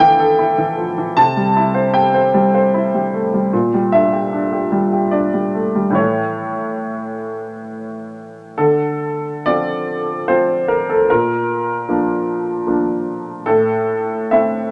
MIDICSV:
0, 0, Header, 1, 2, 480
1, 0, Start_track
1, 0, Key_signature, -1, "minor"
1, 0, Tempo, 788436
1, 717, Time_signature, 3, 2, 24, 8
1, 3125, Tempo, 849858
1, 4085, Tempo, 877193
1, 5525, Tempo, 816327
1, 6485, Tempo, 791557
1, 7925, Tempo, 846262
1, 8629, End_track
2, 0, Start_track
2, 0, Title_t, "Upright piano"
2, 0, Program_c, 0, 0
2, 0, Control_c, 0, 64, 127
2, 0, Note_on_c, 0, 50, 67
2, 0, Note_on_c, 0, 52, 55
2, 0, Note_on_c, 0, 64, 54
2, 0, Note_on_c, 0, 69, 48
2, 0, Note_on_c, 0, 77, 89
2, 0, Note_on_c, 0, 79, 101
2, 72, Note_off_c, 0, 69, 0
2, 117, Note_on_c, 0, 69, 56
2, 192, Note_off_c, 0, 52, 0
2, 235, Note_off_c, 0, 64, 0
2, 235, Note_on_c, 0, 64, 48
2, 310, Note_off_c, 0, 69, 0
2, 354, Note_on_c, 0, 52, 44
2, 428, Note_off_c, 0, 64, 0
2, 473, Note_on_c, 0, 53, 41
2, 547, Note_off_c, 0, 52, 0
2, 595, Note_off_c, 0, 53, 0
2, 597, Note_on_c, 0, 52, 42
2, 693, Note_off_c, 0, 50, 0
2, 710, Note_on_c, 0, 81, 97
2, 713, Note_off_c, 0, 79, 0
2, 715, Note_on_c, 0, 48, 61
2, 716, Note_off_c, 0, 52, 0
2, 726, Control_c, 0, 64, 0
2, 732, Note_off_c, 0, 77, 0
2, 819, Control_c, 0, 64, 127
2, 833, Note_on_c, 0, 55, 45
2, 951, Note_on_c, 0, 64, 49
2, 1023, Note_off_c, 0, 55, 0
2, 1062, Note_on_c, 0, 72, 52
2, 1141, Note_off_c, 0, 64, 0
2, 1179, Note_on_c, 0, 79, 79
2, 1185, Note_on_c, 0, 67, 47
2, 1187, Note_off_c, 0, 81, 0
2, 1256, Note_off_c, 0, 72, 0
2, 1304, Note_on_c, 0, 72, 48
2, 1378, Note_off_c, 0, 67, 0
2, 1426, Note_on_c, 0, 55, 55
2, 1498, Note_off_c, 0, 72, 0
2, 1549, Note_on_c, 0, 72, 49
2, 1621, Note_off_c, 0, 55, 0
2, 1670, Note_on_c, 0, 64, 43
2, 1744, Note_off_c, 0, 72, 0
2, 1794, Note_on_c, 0, 55, 39
2, 1864, Note_off_c, 0, 64, 0
2, 1912, Note_on_c, 0, 57, 40
2, 1986, Note_off_c, 0, 55, 0
2, 2032, Note_off_c, 0, 57, 0
2, 2033, Note_on_c, 0, 55, 40
2, 2127, Note_off_c, 0, 48, 0
2, 2146, Note_off_c, 0, 79, 0
2, 2151, Note_on_c, 0, 46, 56
2, 2152, Note_off_c, 0, 55, 0
2, 2164, Control_c, 0, 64, 0
2, 2247, Control_c, 0, 64, 127
2, 2277, Note_on_c, 0, 55, 39
2, 2389, Note_on_c, 0, 76, 74
2, 2394, Note_on_c, 0, 62, 42
2, 2465, Note_off_c, 0, 55, 0
2, 2514, Note_on_c, 0, 67, 43
2, 2585, Note_off_c, 0, 62, 0
2, 2635, Note_on_c, 0, 62, 39
2, 2707, Note_off_c, 0, 67, 0
2, 2753, Note_on_c, 0, 67, 40
2, 2829, Note_off_c, 0, 62, 0
2, 2873, Note_on_c, 0, 55, 47
2, 2950, Note_off_c, 0, 67, 0
2, 3001, Note_on_c, 0, 67, 42
2, 3073, Note_off_c, 0, 55, 0
2, 3113, Note_on_c, 0, 74, 52
2, 3123, Note_on_c, 0, 62, 40
2, 3124, Note_off_c, 0, 76, 0
2, 3195, Note_off_c, 0, 67, 0
2, 3242, Note_on_c, 0, 55, 35
2, 3311, Note_off_c, 0, 62, 0
2, 3360, Note_on_c, 0, 57, 35
2, 3431, Note_off_c, 0, 55, 0
2, 3476, Note_on_c, 0, 55, 36
2, 3479, Note_off_c, 0, 57, 0
2, 3559, Note_on_c, 0, 45, 46
2, 3569, Note_on_c, 0, 52, 36
2, 3573, Note_on_c, 0, 64, 34
2, 3576, Note_off_c, 0, 46, 0
2, 3581, Note_on_c, 0, 69, 38
2, 3585, Note_on_c, 0, 73, 59
2, 3594, Note_off_c, 0, 74, 0
2, 3598, Note_off_c, 0, 55, 0
2, 3611, Control_c, 0, 64, 0
2, 3723, Control_c, 0, 64, 127
2, 4555, Note_off_c, 0, 73, 0
2, 4999, Note_off_c, 0, 45, 0
2, 5004, Note_off_c, 0, 52, 0
2, 5005, Note_off_c, 0, 64, 0
2, 5009, Note_off_c, 0, 69, 0
2, 5039, Note_on_c, 0, 69, 69
2, 5043, Note_on_c, 0, 50, 51
2, 5051, Control_c, 0, 64, 0
2, 5135, Control_c, 0, 64, 127
2, 5511, Note_off_c, 0, 50, 0
2, 5521, Note_on_c, 0, 74, 76
2, 5523, Note_off_c, 0, 69, 0
2, 5524, Note_on_c, 0, 53, 35
2, 5526, Note_on_c, 0, 60, 38
2, 5530, Note_on_c, 0, 65, 37
2, 5985, Note_off_c, 0, 53, 0
2, 5986, Note_off_c, 0, 60, 0
2, 5988, Note_off_c, 0, 65, 0
2, 6005, Note_on_c, 0, 72, 65
2, 6007, Note_off_c, 0, 74, 0
2, 6007, Note_on_c, 0, 53, 33
2, 6010, Note_on_c, 0, 60, 35
2, 6013, Note_on_c, 0, 65, 35
2, 6242, Note_on_c, 0, 70, 63
2, 6245, Note_off_c, 0, 72, 0
2, 6363, Note_off_c, 0, 70, 0
2, 6366, Note_on_c, 0, 69, 54
2, 6460, Note_off_c, 0, 53, 0
2, 6461, Note_off_c, 0, 60, 0
2, 6463, Note_off_c, 0, 65, 0
2, 6484, Note_off_c, 0, 69, 0
2, 6487, Note_on_c, 0, 70, 69
2, 6493, Control_c, 0, 64, 0
2, 6494, Note_on_c, 0, 46, 49
2, 6600, Control_c, 0, 64, 127
2, 6951, Note_off_c, 0, 46, 0
2, 6963, Note_on_c, 0, 53, 36
2, 6969, Note_on_c, 0, 58, 33
2, 6970, Note_on_c, 0, 62, 38
2, 7413, Note_off_c, 0, 53, 0
2, 7416, Note_off_c, 0, 58, 0
2, 7416, Note_off_c, 0, 62, 0
2, 7438, Note_on_c, 0, 53, 32
2, 7441, Note_on_c, 0, 58, 33
2, 7441, Note_on_c, 0, 62, 37
2, 7680, Note_off_c, 0, 70, 0
2, 7901, Note_off_c, 0, 53, 0
2, 7903, Note_off_c, 0, 58, 0
2, 7903, Note_off_c, 0, 62, 0
2, 7918, Note_on_c, 0, 69, 74
2, 7921, Note_on_c, 0, 45, 48
2, 7935, Control_c, 0, 64, 0
2, 8019, Control_c, 0, 64, 127
2, 8395, Note_off_c, 0, 45, 0
2, 8401, Note_on_c, 0, 76, 72
2, 8407, Note_on_c, 0, 57, 36
2, 8408, Note_off_c, 0, 69, 0
2, 8408, Note_on_c, 0, 60, 35
2, 8411, Note_on_c, 0, 64, 37
2, 8629, Note_off_c, 0, 57, 0
2, 8629, Note_off_c, 0, 60, 0
2, 8629, Note_off_c, 0, 64, 0
2, 8629, Note_off_c, 0, 76, 0
2, 8629, End_track
0, 0, End_of_file